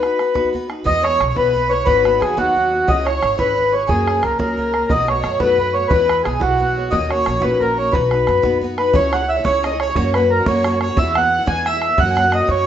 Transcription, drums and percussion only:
0.03 bodhran
0.19 bodhran
0.35 bodhran
0.45 bodhran
0.55 bodhran
0.70 bodhran
0.86 bodhran
1.04 bodhran
1.20 bodhran
1.36 bodhran
1.46 bodhran
1.55 bodhran
1.87 bodhran
2.05 bodhran
2.22 bodhran
2.38 bodhran
2.48 bodhran
2.57 bodhran
2.88 bodhran
3.07 bodhran
3.23 bodhran
3.39 bodhran
3.48 bodhran
3.58 bodhran
3.89 bodhran
4.08 bodhran
4.23 bodhran
4.40 bodhran
4.58 bodhran
4.74 bodhran
4.90 bodhran
5.08 bodhran
5.24 bodhran
5.40 bodhran
5.49 bodhran
5.58 bodhran
5.91 bodhran
6.09 bodhran
6.25 bodhran
6.41 bodhran
6.51 bodhran
6.60 bodhran
6.92 bodhran
7.10 bodhran
7.26 bodhran
7.42 bodhran
7.51 bodhran
7.61 bodhran
7.93 bodhran
8.11 bodhran
8.27 bodhran
8.43 bodhran
8.53 bodhran
8.62 bodhran
8.78 bodhran
8.94 bodhran
9.13 bodhran
9.45 bodhran
9.64 bodhran
9.80 bodhran
9.96 bodhran
10.14 bodhran
10.46 bodhran
10.64 bodhran
10.81 bodhran
10.97 bodhran
11.15 bodhran
11.47 bodhran
11.66 bodhran
11.82 bodhran
11.98 bodhran
12.17 bodhran
12.32 bodhran
12.49 bodhran

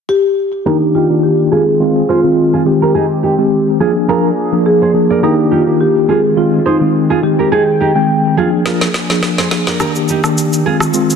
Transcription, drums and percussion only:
8.66 snare
8.81 snare
8.94 snare
9.10 snare
9.23 snare
9.38 snare
9.51 snare
9.67 snare
9.80 cross-stick, shaker
9.95 shaker
10.08 shaker
10.24 cross-stick, shaker
10.38 shaker
10.53 shaker
10.80 cross-stick, shaker
10.94 shaker
11.10 shaker

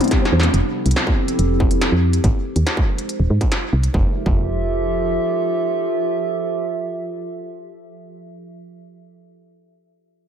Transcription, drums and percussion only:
0.01 closed hi-hat, high tom
0.04 closed hi-hat
0.08 kick, snare, closed hi-hat
0.11 closed hi-hat
0.25 snare
0.40 snare, closed hi-hat, high tom
0.54 closed hi-hat
0.86 closed hi-hat
0.91 closed hi-hat
0.96 snare
1.07 kick
1.28 closed hi-hat
1.39 closed hi-hat
1.60 kick
1.71 closed hi-hat
1.81 snare, closed hi-hat
2.13 closed hi-hat
2.24 kick, closed hi-hat
2.56 closed hi-hat
2.67 snare, closed hi-hat
2.77 kick
2.98 closed hi-hat
3.09 closed hi-hat
3.41 kick, closed hi-hat
3.52 snare, closed hi-hat
3.83 closed hi-hat
3.94 kick
4.26 kick

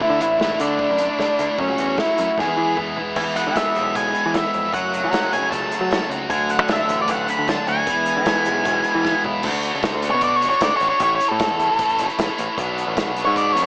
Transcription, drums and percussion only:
0.01 kick
0.21 closed hi-hat
0.40 kick, snare
0.60 closed hi-hat
0.79 kick
0.98 closed hi-hat
1.19 kick, snare
1.39 closed hi-hat
1.58 kick
1.78 closed hi-hat
1.98 kick, snare
2.18 closed hi-hat
2.37 kick, snare
2.76 kick, mid tom
2.96 floor tom
3.16 kick, crash
3.36 closed hi-hat
3.56 kick, snare, closed hi-hat
3.75 closed hi-hat
3.95 kick, closed hi-hat
4.15 closed hi-hat
4.34 kick, snare, closed hi-hat
4.53 closed hi-hat
4.74 kick, closed hi-hat
4.93 closed hi-hat
5.13 kick, snare, closed hi-hat
5.33 closed hi-hat
5.52 kick, closed hi-hat
5.71 closed hi-hat
5.91 kick, snare, closed hi-hat
6.11 closed hi-hat
6.30 kick, closed hi-hat
6.49 closed hi-hat
6.69 kick, snare, closed hi-hat
6.89 closed hi-hat
7.08 kick, closed hi-hat
7.28 closed hi-hat
7.48 kick, snare, closed hi-hat
7.67 closed hi-hat
7.87 kick, closed hi-hat
8.06 closed hi-hat
8.26 kick, snare, closed hi-hat
8.45 closed hi-hat
8.65 kick, closed hi-hat
8.84 closed hi-hat
9.05 kick, snare
9.24 kick
9.43 kick, crash
9.63 closed hi-hat
9.83 kick, snare, closed hi-hat
10.02 closed hi-hat
10.21 kick, closed hi-hat
10.42 closed hi-hat
10.51 closed hi-hat
10.61 kick, snare, closed hi-hat
10.80 closed hi-hat
11.00 kick, closed hi-hat
11.20 closed hi-hat
11.39 kick, snare, closed hi-hat
11.59 closed hi-hat
11.78 kick, closed hi-hat
11.89 closed hi-hat
11.98 closed hi-hat
12.09 closed hi-hat
12.18 kick, snare, closed hi-hat
12.38 closed hi-hat
12.58 kick, closed hi-hat
12.78 closed hi-hat
12.97 kick, snare, closed hi-hat
13.17 closed hi-hat
13.36 kick, closed hi-hat
13.57 closed hi-hat

